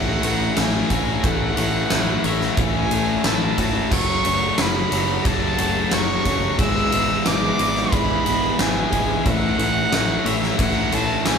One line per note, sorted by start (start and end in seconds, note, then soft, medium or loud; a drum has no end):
0.00 0.15 A1 medium
0.00 0.23 A2 loud
0.00 0.24 E3 loud
0.00 0.23 A3 medium
0.00 0.25 A3 loud
0.00 0.24 C#4 medium
0.00 0.24 E4 loud
0.00 0.25 A4 loud
0.00 2.24 C#5 medium
0.00 0.60 F#5 loud
0.23 0.48 A1 loud
0.23 0.56 A2 medium
0.23 0.57 E3 loud
0.23 0.56 A3 medium
0.23 0.58 A3 medium
0.23 0.57 C#4 medium
0.23 0.57 E4 medium
0.23 0.58 A4 medium
0.23 ride medium
0.57 0.82 A1 medium
0.57 0.89 A2 loud
0.57 0.91 E3 loud
0.57 0.90 A3 loud
0.57 0.91 A3 loud
0.57 0.91 C#4 medium
0.57 0.91 E4 loud
0.57 0.92 A4 loud
0.57 1.27 G#5 medium
0.57 snare loud
0.57 ride loud
0.90 1.15 A1 medium
0.90 1.22 A2 medium
0.90 1.24 E3 medium
0.90 1.24 A3 medium
0.90 1.25 A3 loud
0.90 1.24 C#4 medium
0.90 1.25 E4 medium
0.90 2.61 F#4 medium
0.90 1.25 A4 medium
0.90 kick medium
0.90 ride medium
1.24 1.49 A1 loud
1.24 1.56 A2 loud
1.24 1.58 E3 medium
1.24 1.57 A3 loud
1.24 1.58 A3 loud
1.24 1.57 C#4 medium
1.24 1.58 E4 loud
1.24 1.58 A4 medium
1.24 2.29 F#5 loud
1.24 kick loud
1.24 ride loud
1.57 1.82 A1 medium
1.57 1.90 A2 medium
1.57 1.91 E3 medium
1.57 1.90 A3 medium
1.57 1.92 A3 medium
1.57 1.91 C#4 loud
1.57 1.91 E4 medium
1.57 1.92 A4 medium
1.57 ride medium
1.90 2.16 A1 medium
1.90 2.23 A2 loud
1.90 2.25 E3 loud
1.90 2.24 A3 medium
1.90 2.25 A3 loud
1.90 2.24 C#4 medium
1.90 2.25 E4 loud
1.90 2.25 A4 loud
1.90 snare loud
1.90 ride loud
2.24 2.49 A1 medium
2.24 2.57 A2 loud
2.24 2.58 E3 medium
2.24 2.56 A3 loud
2.24 2.57 A3 medium
2.24 2.57 C#4 loud
2.24 2.58 E4 loud
2.24 2.58 A4 loud
2.24 3.92 C#5 medium
2.24 2.62 E5 medium
2.24 ride medium
2.41 snare soft
2.57 2.83 A1 medium
2.57 2.90 A2 loud
2.57 2.92 E3 medium
2.57 2.90 A3 medium
2.57 2.91 A3 loud
2.57 2.91 C#4 medium
2.57 2.92 E4 medium
2.57 2.92 A4 loud
2.57 3.29 G#5 loud
2.57 kick loud
2.57 ride loud
2.91 3.16 A1 loud
2.91 3.24 A2 medium
2.91 3.25 E3 medium
2.91 3.23 A3 medium
2.91 3.25 A3 medium
2.91 3.23 C#4 medium
2.91 3.25 E4 medium
2.91 3.25 A4 loud
2.91 ride medium
3.24 3.50 A1 medium
3.24 3.57 A2 loud
3.24 3.58 E3 loud
3.24 3.57 A3 medium
3.24 3.58 A3 loud
3.24 3.57 C#4 loud
3.24 3.59 E4 medium
3.24 3.58 A4 loud
3.24 3.93 A5 medium
3.24 snare loud
3.24 ride loud
3.58 3.83 G#1 medium
3.58 3.90 A2 medium
3.58 3.92 E3 medium
3.58 3.89 A3 medium
3.58 3.90 A3 medium
3.58 3.90 C#4 medium
3.58 3.93 E4 medium
3.58 3.92 F#4 medium
3.58 3.90 A4 medium
3.58 kick medium
3.58 ride medium
3.91 4.17 F#1 medium
3.91 4.24 F#2 loud
3.91 4.24 C#3 loud
3.91 4.24 F#3 medium
3.91 4.25 F#3 loud
3.91 4.24 C#4 medium
3.91 4.25 F#4 loud
3.91 4.25 A4 loud
3.91 4.63 C#6 loud
3.91 kick loud
3.91 crash loud
4.25 4.50 F#1 medium
4.25 4.57 F#2 medium
4.25 4.57 C#3 loud
4.25 4.57 F#3 medium
4.25 4.58 F#3 loud
4.25 5.58 A3 medium
4.25 4.58 C#4 medium
4.25 4.59 F#4 medium
4.25 4.59 A4 medium
4.25 ride medium
4.58 4.84 F#1 medium
4.58 4.91 F#2 loud
4.58 4.91 C#3 loud
4.58 4.91 F#3 medium
4.58 4.92 F#3 loud
4.58 4.91 C#4 loud
4.58 5.25 E4 medium
4.58 4.92 F#4 medium
4.58 4.92 A4 loud
4.58 5.27 B5 loud
4.58 snare loud
4.58 ride loud
4.92 5.17 F#1 loud
4.92 5.24 F#2 medium
4.92 5.24 C#3 loud
4.92 5.23 F#3 medium
4.92 5.25 F#3 loud
4.92 5.24 C#4 loud
4.92 5.25 F#4 loud
4.92 5.25 A4 loud
4.92 6.59 C#5 medium
4.92 ride medium
5.25 5.50 F#1 medium
5.25 5.58 F#2 loud
5.25 5.58 C#3 loud
5.25 5.57 F#3 medium
5.25 5.59 F#3 loud
5.25 5.58 C#4 loud
5.25 5.92 E4 medium
5.25 5.58 F#4 loud
5.25 5.59 A4 medium
5.25 5.95 A5 loud
5.25 kick loud
5.25 ride loud
5.58 5.83 F#1 loud
5.58 5.91 F#2 medium
5.58 5.91 C#3 medium
5.58 5.91 F#3 medium
5.58 5.92 F#3 medium
5.58 6.59 A3 medium
5.58 5.91 C#4 medium
5.58 5.92 F#4 medium
5.58 5.92 A4 loud
5.58 ride medium
5.91 6.17 F#1 medium
5.91 6.25 F#2 loud
5.91 6.25 C#3 loud
5.91 6.24 F#3 loud
5.91 6.26 F#3 loud
5.91 6.25 C#4 loud
5.91 7.25 E4 medium
5.91 6.25 F#4 loud
5.91 6.26 A4 loud
5.91 6.60 C#6 loud
5.91 snare loud
5.91 ride loud
6.25 6.50 F#1 loud
6.25 6.57 F#2 medium
6.25 6.57 C#3 medium
6.25 6.57 F#3 medium
6.25 6.58 F#3 medium
6.25 6.57 C#4 medium
6.25 6.57 F#4 medium
6.25 6.57 A4 medium
6.25 kick medium
6.25 ride medium
6.58 6.84 G#1 medium
6.58 6.91 E2 medium
6.58 6.91 B2 loud
6.58 6.93 E3 loud
6.58 6.91 G#3 medium
6.58 6.91 B3 loud
6.58 6.92 E4 loud
6.58 6.92 G#4 loud
6.58 7.29 E6 loud
6.58 kick loud
6.58 ride loud
6.92 7.17 G#1 loud
6.92 7.24 E2 medium
6.92 7.25 B2 loud
6.92 7.26 E3 loud
6.92 7.24 G#3 medium
6.92 7.24 B3 medium
6.92 7.26 E4 loud
6.92 7.25 G#4 loud
6.92 ride medium
7.25 7.50 G#1 medium
7.25 7.58 E2 loud
7.25 7.58 B2 loud
7.25 7.60 E3 loud
7.25 7.58 G#3 medium
7.25 7.58 B3 medium
7.25 7.60 E4 medium
7.25 7.59 G#4 loud
7.25 7.95 D6 loud
7.25 snare loud
7.25 ride loud
7.59 7.84 G#1 loud
7.59 7.90 E2 loud
7.59 7.91 B2 medium
7.59 7.92 E3 loud
7.59 7.91 G#3 loud
7.59 7.92 B3 loud
7.59 7.93 E4 loud
7.59 7.92 G#4 loud
7.59 9.26 D5 medium
7.59 ride medium
7.76 snare soft
7.92 8.17 G#1 medium
7.92 8.24 E2 medium
7.92 8.25 B2 loud
7.92 8.26 E3 loud
7.92 8.24 G#3 loud
7.92 8.24 B3 loud
7.92 8.26 E4 loud
7.92 8.25 G#4 loud
7.92 8.62 B5 loud
7.92 kick loud
7.92 ride loud
8.25 8.51 G#1 loud
8.25 8.58 E2 medium
8.25 8.58 B2 medium
8.25 8.60 E3 loud
8.25 8.57 G#3 medium
8.25 8.58 B3 medium
8.25 8.59 E4 medium
8.25 8.59 G#4 loud
8.25 ride medium
8.58 8.84 G#1 loud
8.58 8.90 E2 loud
8.58 8.91 B2 loud
8.58 8.92 E3 loud
8.58 8.90 G#3 medium
8.58 8.91 B3 loud
8.58 8.92 E4 loud
8.58 8.92 G#4 loud
8.58 9.28 G#5 loud
8.58 snare loud
8.58 ride loud
8.91 9.17 G#1 loud
8.91 9.23 E2 medium
8.91 9.24 B2 medium
8.91 9.25 E3 medium
8.91 9.23 G#3 medium
8.91 9.23 B3 medium
8.91 9.26 E4 medium
8.91 9.24 G#4 medium
8.91 kick medium
8.91 ride medium
9.25 9.50 A1 loud
9.25 9.58 A2 loud
9.25 9.59 E3 loud
9.25 9.58 A3 medium
9.25 9.59 A3 loud
9.25 9.59 C#4 loud
9.25 9.59 E4 loud
9.25 9.59 A4 loud
9.25 10.29 F#5 loud
9.25 kick loud
9.25 ride loud
9.58 9.84 A1 loud
9.58 9.91 A2 loud
9.58 9.92 E3 loud
9.58 9.91 A3 loud
9.58 9.92 A3 loud
9.58 9.92 C#4 loud
9.58 9.92 E4 loud
9.58 9.93 A4 loud
9.58 ride medium
9.91 10.17 A1 medium
9.91 10.24 A2 loud
9.91 10.25 E3 loud
9.91 10.25 A3 loud
9.91 10.26 A3 loud
9.91 10.26 C#4 loud
9.91 10.27 E4 loud
9.91 10.27 A4 loud
9.91 snare loud
9.91 ride loud
10.25 10.50 A1 loud
10.25 10.57 A2 medium
10.25 10.59 E3 loud
10.25 10.58 A3 loud
10.25 10.59 A3 loud
10.25 10.59 C#4 loud
10.25 10.59 E4 loud
10.25 10.60 A4 loud
10.25 11.38 C#5 medium
10.25 10.59 E5 loud
10.25 ride medium
10.43 snare soft
10.58 10.84 A1 loud
10.58 10.91 A2 loud
10.58 10.92 E3 loud
10.58 10.91 A3 loud
10.58 10.93 A3 loud
10.58 10.92 C#4 loud
10.58 10.92 E4 loud
10.58 10.93 A4 loud
10.58 10.96 F#5 loud
10.58 kick loud
10.58 ride loud
10.92 11.17 A1 loud
10.92 11.24 A2 medium
10.92 11.26 E3 loud
10.92 11.26 A3 medium
10.92 11.26 A3 loud
10.92 11.26 C#4 medium
10.92 11.27 E4 medium
10.92 11.27 A4 loud
10.92 11.25 A5 loud
10.92 ride medium
11.25 11.38 A1 loud
11.25 11.38 A2 loud
11.25 11.38 E3 loud
11.25 11.38 A3 loud
11.25 11.38 C#4 loud
11.25 11.38 E4 loud
11.25 11.38 A4 loud
11.25 11.38 G#5 loud
11.25 snare loud
11.25 ride loud